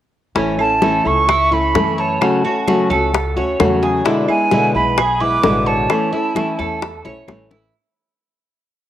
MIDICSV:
0, 0, Header, 1, 7, 480
1, 0, Start_track
1, 0, Key_signature, 3, "major"
1, 0, Tempo, 461184
1, 374, Time_signature, 4, 2, 24, 8
1, 9256, End_track
2, 0, Start_track
2, 0, Title_t, "Flute"
2, 0, Program_c, 0, 73
2, 629, Note_on_c, 0, 81, 92
2, 1114, Note_on_c, 0, 85, 88
2, 1129, Note_off_c, 0, 81, 0
2, 1596, Note_on_c, 0, 83, 97
2, 1612, Note_off_c, 0, 85, 0
2, 2082, Note_on_c, 0, 81, 82
2, 2098, Note_off_c, 0, 83, 0
2, 3036, Note_off_c, 0, 81, 0
2, 4469, Note_on_c, 0, 80, 102
2, 4912, Note_off_c, 0, 80, 0
2, 4947, Note_on_c, 0, 83, 89
2, 5422, Note_on_c, 0, 86, 101
2, 5437, Note_off_c, 0, 83, 0
2, 5900, Note_on_c, 0, 81, 81
2, 5916, Note_off_c, 0, 86, 0
2, 7335, Note_off_c, 0, 81, 0
2, 9256, End_track
3, 0, Start_track
3, 0, Title_t, "Cuban tres"
3, 0, Program_c, 1, 25
3, 371, Note_on_c, 1, 61, 65
3, 842, Note_off_c, 1, 61, 0
3, 855, Note_on_c, 1, 69, 64
3, 1326, Note_off_c, 1, 69, 0
3, 1339, Note_on_c, 1, 64, 68
3, 1574, Note_off_c, 1, 64, 0
3, 1582, Note_on_c, 1, 69, 62
3, 2050, Note_off_c, 1, 69, 0
3, 2061, Note_on_c, 1, 73, 59
3, 2530, Note_off_c, 1, 73, 0
3, 2545, Note_on_c, 1, 66, 69
3, 3013, Note_off_c, 1, 66, 0
3, 3019, Note_on_c, 1, 69, 74
3, 3489, Note_off_c, 1, 69, 0
3, 3503, Note_on_c, 1, 73, 59
3, 3970, Note_off_c, 1, 73, 0
3, 3982, Note_on_c, 1, 68, 69
3, 4217, Note_off_c, 1, 68, 0
3, 4218, Note_on_c, 1, 62, 73
3, 4687, Note_off_c, 1, 62, 0
3, 4700, Note_on_c, 1, 71, 67
3, 5166, Note_off_c, 1, 71, 0
3, 5178, Note_on_c, 1, 68, 70
3, 5413, Note_off_c, 1, 68, 0
3, 5416, Note_on_c, 1, 71, 64
3, 5883, Note_off_c, 1, 71, 0
3, 5894, Note_on_c, 1, 73, 67
3, 6361, Note_off_c, 1, 73, 0
3, 6376, Note_on_c, 1, 64, 62
3, 6841, Note_off_c, 1, 64, 0
3, 6856, Note_on_c, 1, 69, 67
3, 7320, Note_off_c, 1, 69, 0
3, 7335, Note_on_c, 1, 73, 64
3, 7800, Note_off_c, 1, 73, 0
3, 7813, Note_on_c, 1, 64, 71
3, 8046, Note_off_c, 1, 64, 0
3, 9256, End_track
4, 0, Start_track
4, 0, Title_t, "Nylon-string guitar"
4, 0, Program_c, 2, 24
4, 367, Note_on_c, 2, 52, 70
4, 373, Note_on_c, 2, 57, 68
4, 379, Note_on_c, 2, 61, 65
4, 383, Note_on_c, 2, 64, 67
4, 597, Note_off_c, 2, 64, 0
4, 603, Note_off_c, 2, 52, 0
4, 606, Note_off_c, 2, 57, 0
4, 609, Note_off_c, 2, 61, 0
4, 609, Note_on_c, 2, 64, 41
4, 620, Note_on_c, 2, 61, 39
4, 628, Note_on_c, 2, 57, 38
4, 840, Note_off_c, 2, 57, 0
4, 845, Note_off_c, 2, 64, 0
4, 849, Note_on_c, 2, 52, 67
4, 850, Note_off_c, 2, 61, 0
4, 853, Note_on_c, 2, 57, 73
4, 861, Note_on_c, 2, 61, 72
4, 866, Note_on_c, 2, 64, 78
4, 1081, Note_off_c, 2, 64, 0
4, 1085, Note_off_c, 2, 52, 0
4, 1088, Note_off_c, 2, 57, 0
4, 1089, Note_off_c, 2, 61, 0
4, 1093, Note_on_c, 2, 64, 41
4, 1101, Note_on_c, 2, 61, 44
4, 1106, Note_on_c, 2, 57, 38
4, 1326, Note_off_c, 2, 57, 0
4, 1328, Note_off_c, 2, 64, 0
4, 1332, Note_off_c, 2, 61, 0
4, 1575, Note_on_c, 2, 64, 51
4, 1586, Note_on_c, 2, 61, 40
4, 1594, Note_on_c, 2, 57, 35
4, 1811, Note_off_c, 2, 64, 0
4, 1813, Note_off_c, 2, 57, 0
4, 1816, Note_off_c, 2, 61, 0
4, 1820, Note_on_c, 2, 52, 61
4, 1826, Note_on_c, 2, 57, 71
4, 1830, Note_on_c, 2, 61, 59
4, 1837, Note_on_c, 2, 64, 77
4, 2295, Note_off_c, 2, 52, 0
4, 2297, Note_off_c, 2, 57, 0
4, 2300, Note_off_c, 2, 61, 0
4, 2303, Note_off_c, 2, 64, 0
4, 2303, Note_on_c, 2, 49, 70
4, 2306, Note_on_c, 2, 54, 70
4, 2313, Note_on_c, 2, 57, 71
4, 2314, Note_on_c, 2, 61, 79
4, 2318, Note_on_c, 2, 66, 85
4, 2530, Note_off_c, 2, 66, 0
4, 2536, Note_off_c, 2, 49, 0
4, 2537, Note_off_c, 2, 54, 0
4, 2541, Note_off_c, 2, 57, 0
4, 2541, Note_off_c, 2, 61, 0
4, 2543, Note_on_c, 2, 66, 45
4, 2552, Note_on_c, 2, 61, 38
4, 2561, Note_on_c, 2, 57, 39
4, 2776, Note_off_c, 2, 66, 0
4, 2781, Note_off_c, 2, 57, 0
4, 2781, Note_off_c, 2, 61, 0
4, 2783, Note_on_c, 2, 49, 70
4, 2789, Note_on_c, 2, 54, 66
4, 2793, Note_on_c, 2, 57, 79
4, 2797, Note_on_c, 2, 61, 77
4, 2800, Note_on_c, 2, 66, 79
4, 3012, Note_off_c, 2, 66, 0
4, 3016, Note_off_c, 2, 49, 0
4, 3019, Note_off_c, 2, 54, 0
4, 3021, Note_off_c, 2, 57, 0
4, 3021, Note_off_c, 2, 61, 0
4, 3024, Note_on_c, 2, 66, 46
4, 3033, Note_on_c, 2, 61, 44
4, 3039, Note_on_c, 2, 57, 36
4, 3254, Note_off_c, 2, 57, 0
4, 3256, Note_off_c, 2, 61, 0
4, 3257, Note_off_c, 2, 66, 0
4, 3501, Note_on_c, 2, 66, 48
4, 3512, Note_on_c, 2, 61, 42
4, 3518, Note_on_c, 2, 57, 38
4, 3735, Note_off_c, 2, 66, 0
4, 3738, Note_off_c, 2, 57, 0
4, 3740, Note_off_c, 2, 61, 0
4, 3741, Note_on_c, 2, 49, 64
4, 3745, Note_on_c, 2, 54, 64
4, 3751, Note_on_c, 2, 57, 66
4, 3752, Note_on_c, 2, 61, 60
4, 3756, Note_on_c, 2, 66, 73
4, 4208, Note_off_c, 2, 49, 0
4, 4213, Note_on_c, 2, 47, 69
4, 4215, Note_off_c, 2, 54, 0
4, 4219, Note_off_c, 2, 57, 0
4, 4220, Note_off_c, 2, 61, 0
4, 4220, Note_on_c, 2, 50, 67
4, 4221, Note_off_c, 2, 66, 0
4, 4225, Note_on_c, 2, 56, 79
4, 4227, Note_on_c, 2, 59, 81
4, 4230, Note_on_c, 2, 64, 77
4, 4445, Note_off_c, 2, 64, 0
4, 4450, Note_off_c, 2, 47, 0
4, 4453, Note_off_c, 2, 50, 0
4, 4456, Note_off_c, 2, 56, 0
4, 4457, Note_off_c, 2, 59, 0
4, 4458, Note_on_c, 2, 64, 49
4, 4467, Note_on_c, 2, 59, 41
4, 4474, Note_on_c, 2, 56, 41
4, 4692, Note_off_c, 2, 64, 0
4, 4694, Note_off_c, 2, 56, 0
4, 4696, Note_off_c, 2, 59, 0
4, 4698, Note_on_c, 2, 47, 72
4, 4705, Note_on_c, 2, 50, 68
4, 4706, Note_on_c, 2, 56, 75
4, 4712, Note_on_c, 2, 59, 81
4, 4716, Note_on_c, 2, 64, 81
4, 4926, Note_off_c, 2, 64, 0
4, 4931, Note_off_c, 2, 47, 0
4, 4935, Note_off_c, 2, 50, 0
4, 4936, Note_off_c, 2, 56, 0
4, 4938, Note_off_c, 2, 59, 0
4, 4938, Note_on_c, 2, 64, 45
4, 4950, Note_on_c, 2, 59, 42
4, 4955, Note_on_c, 2, 56, 39
4, 5171, Note_off_c, 2, 64, 0
4, 5177, Note_off_c, 2, 59, 0
4, 5179, Note_off_c, 2, 56, 0
4, 5425, Note_on_c, 2, 64, 43
4, 5434, Note_on_c, 2, 59, 43
4, 5444, Note_on_c, 2, 56, 44
4, 5653, Note_off_c, 2, 64, 0
4, 5658, Note_off_c, 2, 56, 0
4, 5658, Note_off_c, 2, 59, 0
4, 5660, Note_on_c, 2, 47, 69
4, 5666, Note_on_c, 2, 50, 65
4, 5671, Note_on_c, 2, 56, 71
4, 5674, Note_on_c, 2, 59, 74
4, 5677, Note_on_c, 2, 64, 77
4, 6129, Note_off_c, 2, 47, 0
4, 6132, Note_off_c, 2, 50, 0
4, 6135, Note_off_c, 2, 56, 0
4, 6136, Note_off_c, 2, 59, 0
4, 6137, Note_on_c, 2, 52, 73
4, 6138, Note_off_c, 2, 64, 0
4, 6143, Note_on_c, 2, 57, 74
4, 6146, Note_on_c, 2, 61, 72
4, 6152, Note_on_c, 2, 64, 74
4, 6367, Note_off_c, 2, 64, 0
4, 6368, Note_off_c, 2, 52, 0
4, 6371, Note_off_c, 2, 57, 0
4, 6372, Note_off_c, 2, 61, 0
4, 6380, Note_on_c, 2, 64, 46
4, 6391, Note_on_c, 2, 61, 44
4, 6396, Note_on_c, 2, 57, 40
4, 6609, Note_off_c, 2, 57, 0
4, 6609, Note_off_c, 2, 64, 0
4, 6611, Note_off_c, 2, 61, 0
4, 6611, Note_on_c, 2, 52, 77
4, 6621, Note_on_c, 2, 57, 68
4, 6623, Note_on_c, 2, 61, 73
4, 6631, Note_on_c, 2, 64, 76
4, 6844, Note_off_c, 2, 52, 0
4, 6844, Note_off_c, 2, 64, 0
4, 6849, Note_off_c, 2, 57, 0
4, 6850, Note_off_c, 2, 61, 0
4, 6856, Note_on_c, 2, 64, 50
4, 6866, Note_on_c, 2, 61, 43
4, 6875, Note_on_c, 2, 57, 38
4, 7086, Note_off_c, 2, 64, 0
4, 7089, Note_off_c, 2, 57, 0
4, 7091, Note_off_c, 2, 61, 0
4, 7338, Note_on_c, 2, 64, 50
4, 7345, Note_on_c, 2, 61, 41
4, 7354, Note_on_c, 2, 57, 38
4, 7566, Note_off_c, 2, 64, 0
4, 7567, Note_off_c, 2, 57, 0
4, 7570, Note_off_c, 2, 61, 0
4, 7573, Note_on_c, 2, 52, 72
4, 7580, Note_on_c, 2, 57, 74
4, 7583, Note_on_c, 2, 61, 65
4, 7591, Note_on_c, 2, 64, 68
4, 8043, Note_off_c, 2, 52, 0
4, 8047, Note_off_c, 2, 57, 0
4, 8048, Note_off_c, 2, 61, 0
4, 8052, Note_off_c, 2, 64, 0
4, 9256, End_track
5, 0, Start_track
5, 0, Title_t, "Upright bass"
5, 0, Program_c, 3, 32
5, 372, Note_on_c, 3, 33, 85
5, 1057, Note_off_c, 3, 33, 0
5, 1095, Note_on_c, 3, 37, 87
5, 1780, Note_off_c, 3, 37, 0
5, 1817, Note_on_c, 3, 42, 88
5, 2247, Note_off_c, 3, 42, 0
5, 3020, Note_on_c, 3, 37, 91
5, 3470, Note_off_c, 3, 37, 0
5, 3501, Note_on_c, 3, 38, 65
5, 3727, Note_off_c, 3, 38, 0
5, 3745, Note_on_c, 3, 40, 93
5, 4170, Note_off_c, 3, 40, 0
5, 4941, Note_on_c, 3, 35, 96
5, 5618, Note_off_c, 3, 35, 0
5, 5657, Note_on_c, 3, 33, 95
5, 6081, Note_off_c, 3, 33, 0
5, 6858, Note_on_c, 3, 40, 99
5, 7302, Note_off_c, 3, 40, 0
5, 7337, Note_on_c, 3, 35, 60
5, 7559, Note_off_c, 3, 35, 0
5, 7574, Note_on_c, 3, 33, 95
5, 7997, Note_off_c, 3, 33, 0
5, 9256, End_track
6, 0, Start_track
6, 0, Title_t, "Muted nylon-string guitar strokes"
6, 1336, Note_on_c, 9, 29, 52
6, 1440, Note_off_c, 9, 29, 0
6, 3263, Note_on_c, 9, 29, 55
6, 3367, Note_off_c, 9, 29, 0
6, 5186, Note_on_c, 9, 29, 55
6, 5290, Note_off_c, 9, 29, 0
6, 7101, Note_on_c, 9, 29, 60
6, 7205, Note_off_c, 9, 29, 0
6, 9256, End_track
7, 0, Start_track
7, 0, Title_t, "Drums"
7, 372, Note_on_c, 9, 60, 61
7, 372, Note_on_c, 9, 63, 32
7, 476, Note_off_c, 9, 60, 0
7, 476, Note_off_c, 9, 63, 0
7, 614, Note_on_c, 9, 75, 60
7, 615, Note_on_c, 9, 63, 29
7, 718, Note_off_c, 9, 75, 0
7, 719, Note_off_c, 9, 63, 0
7, 853, Note_on_c, 9, 60, 53
7, 854, Note_on_c, 9, 63, 79
7, 957, Note_off_c, 9, 60, 0
7, 958, Note_off_c, 9, 63, 0
7, 1097, Note_on_c, 9, 63, 34
7, 1201, Note_off_c, 9, 63, 0
7, 1339, Note_on_c, 9, 63, 32
7, 1340, Note_on_c, 9, 60, 65
7, 1344, Note_on_c, 9, 75, 65
7, 1443, Note_off_c, 9, 63, 0
7, 1444, Note_off_c, 9, 60, 0
7, 1448, Note_off_c, 9, 75, 0
7, 1582, Note_on_c, 9, 63, 33
7, 1686, Note_off_c, 9, 63, 0
7, 1823, Note_on_c, 9, 60, 70
7, 1823, Note_on_c, 9, 61, 76
7, 1823, Note_on_c, 9, 63, 75
7, 1927, Note_off_c, 9, 63, 0
7, 1928, Note_off_c, 9, 60, 0
7, 1928, Note_off_c, 9, 61, 0
7, 2303, Note_on_c, 9, 75, 61
7, 2304, Note_on_c, 9, 63, 30
7, 2308, Note_on_c, 9, 60, 68
7, 2407, Note_off_c, 9, 75, 0
7, 2409, Note_off_c, 9, 63, 0
7, 2412, Note_off_c, 9, 60, 0
7, 2547, Note_on_c, 9, 63, 31
7, 2651, Note_off_c, 9, 63, 0
7, 2784, Note_on_c, 9, 75, 54
7, 2786, Note_on_c, 9, 63, 90
7, 2791, Note_on_c, 9, 60, 56
7, 2888, Note_off_c, 9, 75, 0
7, 2890, Note_off_c, 9, 63, 0
7, 2895, Note_off_c, 9, 60, 0
7, 3028, Note_on_c, 9, 63, 34
7, 3033, Note_on_c, 9, 60, 31
7, 3132, Note_off_c, 9, 63, 0
7, 3137, Note_off_c, 9, 60, 0
7, 3272, Note_on_c, 9, 63, 29
7, 3273, Note_on_c, 9, 60, 76
7, 3376, Note_off_c, 9, 63, 0
7, 3377, Note_off_c, 9, 60, 0
7, 3510, Note_on_c, 9, 63, 31
7, 3511, Note_on_c, 9, 60, 31
7, 3614, Note_off_c, 9, 63, 0
7, 3615, Note_off_c, 9, 60, 0
7, 3745, Note_on_c, 9, 63, 75
7, 3746, Note_on_c, 9, 60, 60
7, 3746, Note_on_c, 9, 61, 80
7, 3746, Note_on_c, 9, 75, 63
7, 3849, Note_off_c, 9, 63, 0
7, 3850, Note_off_c, 9, 60, 0
7, 3850, Note_off_c, 9, 61, 0
7, 3850, Note_off_c, 9, 75, 0
7, 3981, Note_on_c, 9, 63, 35
7, 3986, Note_on_c, 9, 60, 33
7, 4085, Note_off_c, 9, 63, 0
7, 4090, Note_off_c, 9, 60, 0
7, 4222, Note_on_c, 9, 60, 68
7, 4227, Note_on_c, 9, 63, 29
7, 4326, Note_off_c, 9, 60, 0
7, 4331, Note_off_c, 9, 63, 0
7, 4460, Note_on_c, 9, 75, 59
7, 4464, Note_on_c, 9, 63, 31
7, 4564, Note_off_c, 9, 75, 0
7, 4568, Note_off_c, 9, 63, 0
7, 4698, Note_on_c, 9, 60, 51
7, 4705, Note_on_c, 9, 63, 82
7, 4802, Note_off_c, 9, 60, 0
7, 4809, Note_off_c, 9, 63, 0
7, 4945, Note_on_c, 9, 63, 32
7, 5049, Note_off_c, 9, 63, 0
7, 5180, Note_on_c, 9, 60, 75
7, 5181, Note_on_c, 9, 63, 33
7, 5181, Note_on_c, 9, 75, 73
7, 5284, Note_off_c, 9, 60, 0
7, 5285, Note_off_c, 9, 63, 0
7, 5285, Note_off_c, 9, 75, 0
7, 5427, Note_on_c, 9, 63, 30
7, 5531, Note_off_c, 9, 63, 0
7, 5657, Note_on_c, 9, 60, 63
7, 5657, Note_on_c, 9, 61, 75
7, 5665, Note_on_c, 9, 63, 78
7, 5761, Note_off_c, 9, 60, 0
7, 5761, Note_off_c, 9, 61, 0
7, 5769, Note_off_c, 9, 63, 0
7, 6138, Note_on_c, 9, 60, 65
7, 6139, Note_on_c, 9, 75, 62
7, 6148, Note_on_c, 9, 63, 30
7, 6243, Note_off_c, 9, 60, 0
7, 6243, Note_off_c, 9, 75, 0
7, 6252, Note_off_c, 9, 63, 0
7, 6385, Note_on_c, 9, 63, 31
7, 6489, Note_off_c, 9, 63, 0
7, 6619, Note_on_c, 9, 60, 55
7, 6619, Note_on_c, 9, 75, 52
7, 6627, Note_on_c, 9, 63, 89
7, 6723, Note_off_c, 9, 60, 0
7, 6723, Note_off_c, 9, 75, 0
7, 6731, Note_off_c, 9, 63, 0
7, 6864, Note_on_c, 9, 60, 34
7, 6869, Note_on_c, 9, 63, 36
7, 6968, Note_off_c, 9, 60, 0
7, 6973, Note_off_c, 9, 63, 0
7, 7102, Note_on_c, 9, 60, 65
7, 7106, Note_on_c, 9, 63, 32
7, 7206, Note_off_c, 9, 60, 0
7, 7210, Note_off_c, 9, 63, 0
7, 7341, Note_on_c, 9, 63, 32
7, 7343, Note_on_c, 9, 60, 36
7, 7445, Note_off_c, 9, 63, 0
7, 7447, Note_off_c, 9, 60, 0
7, 7576, Note_on_c, 9, 75, 59
7, 7580, Note_on_c, 9, 63, 73
7, 7581, Note_on_c, 9, 60, 90
7, 7680, Note_off_c, 9, 75, 0
7, 7684, Note_off_c, 9, 63, 0
7, 7685, Note_off_c, 9, 60, 0
7, 7818, Note_on_c, 9, 61, 69
7, 7922, Note_off_c, 9, 61, 0
7, 9256, End_track
0, 0, End_of_file